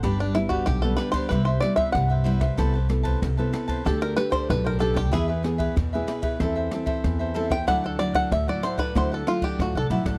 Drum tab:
RD |x-xxx-xxx-xxx-xx|x-xxx-xxx-xxx-xx|x-xxx-xxx-xxx-xx|x-xxx-xxx-xxx-xx|
SD |r-r-r-r-r-r-r--r|r-r-r-r-r-r-r--r|r-r-r-r-r-r-r--r|r-r-r-r-r-r-r--r|
BD |o--oo--oo--oo--o|o--oo--oo--oo--o|o--oo--oo--oo--o|o--oo--oo--oo--o|